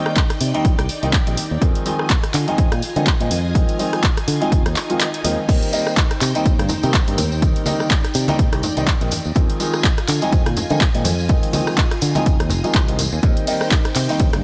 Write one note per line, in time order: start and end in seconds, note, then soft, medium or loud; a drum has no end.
0.00 0.12 D#3 loud
0.00 0.12 G3 medium
0.00 0.12 A#3 medium
0.00 0.12 C4 medium
0.00 0.12 D#4 loud
0.00 1.58 D#4 medium
0.00 1.60 D5 medium
0.00 1.58 G5 medium
0.06 cross-stick medium
0.16 kick loud
0.16 clap loud
0.16 closed hi-hat medium
0.30 cross-stick medium
0.30 closed hi-hat medium
0.41 0.52 C3 medium
0.41 open hi-hat loud
0.54 0.72 D#3 medium
0.54 0.72 G3 medium
0.54 0.72 A#3 medium
0.54 0.72 C4 medium
0.54 0.73 D#4 loud
0.54 closed hi-hat soft
0.65 0.76 A#1 medium
0.65 kick loud
0.65 closed hi-hat medium
0.79 0.87 C2 medium
0.79 cross-stick medium
0.79 closed hi-hat medium
0.89 open hi-hat loud
1.02 1.11 C2 medium
1.02 1.13 D#3 medium
1.02 1.13 G3 medium
1.02 1.13 A#3 medium
1.02 1.13 C4 medium
1.02 1.13 D#4 medium
1.02 closed hi-hat soft
1.13 kick loud
1.13 clap loud
1.13 closed hi-hat medium
1.27 1.35 A#1 medium
1.27 1.37 D#3 medium
1.27 1.37 G3 medium
1.27 1.37 A#3 medium
1.27 1.37 C4 medium
1.27 1.38 D#4 medium
1.27 closed hi-hat medium
1.37 muted fingered electric bass stroke soft
1.37 open hi-hat loud
1.51 1.59 D#2 medium
1.61 1.73 F2 loud
1.61 1.83 D#3 medium
1.61 1.83 F3 medium
1.61 1.83 G#3 medium
1.61 1.83 C4 medium
1.61 1.83 D#4 medium
1.61 5.45 F4 medium
1.61 5.45 D#5 medium
1.61 5.45 G#5 medium
1.61 kick loud
1.61 closed hi-hat medium
1.75 closed hi-hat medium
1.86 2.05 D#3 medium
1.86 2.05 F3 medium
1.86 2.05 G#3 medium
1.86 2.06 C4 medium
1.86 2.06 D#4 loud
1.86 open hi-hat loud
1.99 cross-stick medium
2.10 kick loud
2.10 clap loud
2.10 closed hi-hat medium
2.23 cross-stick medium
2.23 closed hi-hat medium
2.34 2.45 D3 medium
2.34 clap medium
2.34 open hi-hat loud
2.48 2.66 D#3 loud
2.48 2.66 F3 medium
2.48 2.66 G#3 medium
2.48 2.66 C4 medium
2.48 2.66 D#4 loud
2.48 closed hi-hat soft
2.58 2.69 F2 loud
2.58 kick loud
2.58 closed hi-hat medium
2.72 2.80 A#2 medium
2.72 cross-stick medium
2.72 closed hi-hat medium
2.82 open hi-hat loud
2.96 3.05 D3 loud
2.96 3.06 D#3 medium
2.96 3.06 F3 medium
2.96 3.07 G#3 medium
2.96 3.07 C4 medium
2.96 3.07 D#4 medium
2.96 closed hi-hat soft
3.07 kick loud
3.07 clap loud
3.07 closed hi-hat medium
3.20 3.29 A#2 medium
3.20 3.31 D#3 medium
3.20 3.31 F3 medium
3.20 3.31 G#3 medium
3.20 3.31 C4 medium
3.20 3.31 D#4 medium
3.20 closed hi-hat medium
3.31 3.64 F2 loud
3.31 open hi-hat loud
3.55 3.77 D#3 medium
3.55 3.77 F3 medium
3.55 3.77 G#3 medium
3.55 3.77 C4 medium
3.55 3.77 D#4 medium
3.55 kick loud
3.55 closed hi-hat medium
3.69 closed hi-hat medium
3.79 3.99 D#3 medium
3.79 3.99 F3 medium
3.79 3.99 G#3 medium
3.79 3.99 C4 medium
3.79 3.99 D#4 loud
3.79 open hi-hat loud
3.93 cross-stick medium
3.93 closed hi-hat soft
4.04 kick loud
4.04 clap loud
4.04 closed hi-hat medium
4.17 cross-stick medium
4.17 closed hi-hat medium
4.28 4.39 D3 medium
4.28 open hi-hat loud
4.41 4.59 D#3 medium
4.41 4.59 F3 medium
4.41 4.59 G#3 medium
4.41 4.60 C4 medium
4.41 4.60 D#4 loud
4.41 closed hi-hat soft
4.52 4.63 F1 medium
4.52 kick loud
4.52 closed hi-hat medium
4.52 swell medium
4.66 4.74 D#2 medium
4.66 cross-stick medium
4.66 closed hi-hat medium
4.76 clap medium
4.76 open hi-hat loud
4.89 5.00 D#3 medium
4.89 5.00 F3 medium
4.89 5.00 G#3 medium
4.89 5.00 C4 medium
4.89 5.00 F4 medium
4.89 closed hi-hat soft
5.00 clap loud
5.00 closed hi-hat medium
5.14 closed hi-hat medium
5.24 5.35 D#2 medium
5.24 5.38 D#3 medium
5.24 5.38 F3 medium
5.24 5.38 G#3 medium
5.24 5.38 C4 medium
5.24 5.38 D#4 loud
5.24 open hi-hat loud
5.48 5.60 D#2 loud
5.48 5.70 D#3 medium
5.48 5.70 G3 medium
5.48 5.70 A#3 medium
5.48 5.71 C4 medium
5.48 9.32 D#4 medium
5.48 5.71 D#4 medium
5.48 7.40 C5 medium
5.48 9.32 G5 medium
5.48 kick loud
5.48 closed hi-hat medium
5.48 crash medium
5.48 tambourine soft
5.63 closed hi-hat medium
5.72 5.92 D#3 medium
5.72 5.92 G3 medium
5.72 5.92 A#3 medium
5.72 5.93 C4 medium
5.72 5.93 D#4 loud
5.72 open hi-hat loud
5.72 tambourine medium
5.87 cross-stick medium
5.87 tambourine soft
5.97 kick loud
5.97 clap loud
5.97 closed hi-hat medium
5.97 tambourine soft
6.11 cross-stick medium
6.11 closed hi-hat medium
6.21 6.32 C3 medium
6.21 clap medium
6.21 open hi-hat loud
6.21 tambourine medium
6.35 6.53 D#3 medium
6.35 6.53 G3 medium
6.35 6.53 A#3 medium
6.35 6.53 C4 medium
6.35 6.53 D#4 loud
6.35 closed hi-hat soft
6.35 tambourine medium
6.46 6.56 D#2 medium
6.46 kick loud
6.46 closed hi-hat medium
6.46 tambourine soft
6.59 6.68 G2 medium
6.59 cross-stick medium
6.59 closed hi-hat medium
6.59 high conga medium
6.69 open hi-hat loud
6.69 tambourine medium
6.69 low conga medium
6.83 6.92 C3 loud
6.83 6.93 D#3 medium
6.83 6.94 G3 medium
6.83 6.94 A#3 medium
6.83 6.94 C4 medium
6.83 6.94 D#4 medium
6.83 closed hi-hat soft
6.83 tambourine medium
6.93 kick loud
6.93 clap loud
6.93 closed hi-hat medium
6.93 tambourine soft
7.07 7.16 G2 medium
7.07 7.18 D#3 medium
7.07 7.18 G3 medium
7.07 7.18 A#3 medium
7.07 7.18 C4 medium
7.07 7.18 D#4 medium
7.07 closed hi-hat medium
7.18 7.51 D#2 loud
7.18 open hi-hat loud
7.18 tambourine loud
7.18 low conga medium
7.32 tambourine medium
7.42 7.64 D#3 medium
7.42 7.64 G3 medium
7.42 7.64 A#3 medium
7.42 7.64 C4 medium
7.42 7.64 D#4 medium
7.42 9.34 D5 medium
7.42 kick loud
7.42 closed hi-hat medium
7.42 tambourine soft
7.56 closed hi-hat medium
7.66 7.86 D#3 loud
7.66 7.86 G3 medium
7.66 7.86 A#3 medium
7.66 7.86 C4 medium
7.66 7.86 D#4 loud
7.66 open hi-hat loud
7.66 tambourine medium
7.66 high conga medium
7.80 cross-stick medium
7.80 tambourine medium
7.89 kick loud
7.89 clap loud
7.89 closed hi-hat medium
7.89 tambourine soft
8.04 cross-stick medium
8.04 closed hi-hat medium
8.14 8.26 C3 medium
8.14 open hi-hat loud
8.14 tambourine loud
8.28 8.46 D#3 medium
8.28 8.47 G3 medium
8.28 8.47 A#3 medium
8.28 8.47 C4 medium
8.28 8.47 D#4 loud
8.28 closed hi-hat soft
8.28 tambourine soft
8.28 high conga loud
8.39 8.50 A#1 medium
8.39 kick loud
8.39 closed hi-hat medium
8.53 8.61 C2 medium
8.53 cross-stick medium
8.53 closed hi-hat medium
8.63 open hi-hat loud
8.63 tambourine medium
8.63 low conga medium
8.77 8.85 C2 medium
8.77 8.87 D#3 medium
8.77 8.87 G3 medium
8.77 8.87 A#3 medium
8.77 8.87 C4 medium
8.77 8.87 D#4 medium
8.77 closed hi-hat soft
8.77 tambourine medium
8.87 kick loud
8.87 clap loud
8.87 closed hi-hat medium
9.01 9.09 A#1 medium
9.01 9.11 D#3 medium
9.01 9.11 G3 medium
9.01 9.11 A#3 medium
9.01 9.11 C4 medium
9.01 9.12 D#4 medium
9.01 closed hi-hat medium
9.11 muted fingered electric bass stroke soft
9.11 open hi-hat loud
9.11 tambourine loud
9.11 low conga medium
9.25 9.34 D#2 medium
9.25 tambourine medium
9.35 9.47 F2 loud
9.35 9.57 D#3 medium
9.35 9.57 F3 medium
9.35 9.57 G#3 medium
9.35 9.57 C4 medium
9.35 9.58 D#4 medium
9.35 13.19 F4 medium
9.35 13.19 D#5 medium
9.35 13.19 G#5 medium
9.35 kick loud
9.35 closed hi-hat medium
9.35 tambourine soft
9.50 closed hi-hat medium
9.59 9.79 D#3 loud
9.59 9.79 F3 medium
9.59 9.79 G#3 medium
9.59 9.80 C4 medium
9.59 9.80 D#4 loud
9.59 open hi-hat loud
9.59 tambourine medium
9.73 cross-stick medium
9.73 tambourine medium
9.84 kick loud
9.84 clap loud
9.84 closed hi-hat medium
9.98 cross-stick medium
9.98 closed hi-hat medium
10.08 10.19 D3 medium
10.08 clap medium
10.08 open hi-hat loud
10.08 tambourine medium
10.21 10.40 D#3 medium
10.21 10.40 F3 medium
10.21 10.40 G#3 medium
10.21 10.40 C4 medium
10.21 10.40 D#4 loud
10.21 closed hi-hat soft
10.21 tambourine medium
10.32 10.43 F2 loud
10.32 kick loud
10.32 closed hi-hat medium
10.46 10.55 A#2 medium
10.46 cross-stick medium
10.46 closed hi-hat medium
10.46 high conga medium
10.57 open hi-hat loud
10.57 tambourine medium
10.57 low conga medium
10.70 10.79 D3 loud
10.70 10.81 D#3 medium
10.70 10.81 F3 medium
10.70 10.81 G#3 medium
10.70 10.81 C4 medium
10.70 10.81 D#4 medium
10.70 closed hi-hat soft
10.70 tambourine medium
10.81 kick loud
10.81 clap loud
10.81 closed hi-hat medium
10.94 11.03 A#2 medium
10.94 11.05 D#3 medium
10.94 11.05 F3 medium
10.94 11.05 G#3 medium
10.94 11.05 C4 medium
10.94 11.05 D#4 medium
10.94 closed hi-hat medium
11.04 11.39 F2 loud
11.04 open hi-hat loud
11.04 tambourine medium
11.04 low conga medium
11.19 tambourine medium
11.29 11.51 D#3 medium
11.29 11.51 F3 medium
11.29 11.51 G#3 medium
11.29 11.51 C4 medium
11.29 11.51 D#4 medium
11.29 kick loud
11.29 closed hi-hat medium
11.43 closed hi-hat medium
11.53 11.73 D#3 medium
11.53 11.73 F3 medium
11.53 11.73 G#3 medium
11.53 11.73 C4 medium
11.53 11.73 D#4 loud
11.53 open hi-hat loud
11.53 tambourine medium
11.53 high conga loud
11.67 cross-stick medium
11.67 tambourine medium
11.78 kick loud
11.78 clap loud
11.78 closed hi-hat medium
11.78 tambourine soft
11.91 cross-stick medium
11.91 closed hi-hat medium
12.01 12.13 D3 medium
12.01 open hi-hat loud
12.01 tambourine medium
12.15 12.34 D#3 medium
12.15 12.34 F3 medium
12.15 12.34 G#3 medium
12.15 12.34 C4 medium
12.15 12.34 D#4 loud
12.15 closed hi-hat soft
12.15 tambourine soft
12.15 high conga medium
12.26 12.37 F1 medium
12.26 kick loud
12.26 closed hi-hat medium
12.26 tambourine soft
12.40 12.48 D#2 medium
12.40 cross-stick medium
12.40 closed hi-hat soft
12.50 12.61 F1 loud
12.50 open hi-hat loud
12.50 tambourine medium
12.50 low conga medium
12.64 12.74 D#3 medium
12.64 12.74 F3 medium
12.64 12.74 G#3 medium
12.64 12.74 C4 medium
12.64 12.74 D#4 loud
12.64 muted fingered electric bass stroke soft
12.64 closed hi-hat soft
12.64 tambourine medium
12.74 13.08 C2 loud
12.74 kick loud
12.74 clap loud
12.74 closed hi-hat medium
12.74 tambourine soft
12.88 12.98 D#3 medium
12.88 12.98 F3 medium
12.88 12.99 G#3 medium
12.88 12.99 C4 medium
12.88 12.99 D#4 medium
12.88 closed hi-hat medium
12.99 open hi-hat loud
12.99 tambourine medium
12.99 low conga medium
13.12 13.21 D#2 loud
13.12 tambourine medium
13.23 13.45 D#3 medium
13.23 13.45 G3 medium
13.23 13.45 A#3 medium
13.23 13.45 C4 medium
13.23 14.44 D#4 medium
13.23 13.45 D#4 medium
13.23 14.44 C5 medium
13.23 14.44 G5 medium
13.23 kick loud
13.23 closed hi-hat medium
13.23 tambourine soft
13.37 closed hi-hat medium
13.47 13.67 D#3 medium
13.47 13.67 G3 medium
13.47 13.67 A#3 medium
13.47 13.67 C4 medium
13.47 13.67 D#4 loud
13.47 open hi-hat loud
13.47 ride medium
13.47 tambourine medium
13.61 cross-stick medium
13.61 tambourine medium
13.71 kick loud
13.71 clap loud
13.71 closed hi-hat medium
13.71 tambourine soft
13.85 cross-stick medium
13.85 closed hi-hat medium
13.95 14.06 C3 medium
13.95 clap medium
13.95 open hi-hat loud
13.95 ride medium
13.95 tambourine medium
14.09 14.27 D#3 loud
14.09 14.27 G3 medium
14.09 14.27 A#3 medium
14.09 14.28 C4 medium
14.09 14.28 D#4 loud
14.09 closed hi-hat soft
14.09 tambourine medium
14.20 14.31 D#2 medium
14.20 kick loud
14.20 closed hi-hat medium
14.33 14.42 G2 medium
14.33 cross-stick medium
14.33 closed hi-hat medium
14.33 high conga medium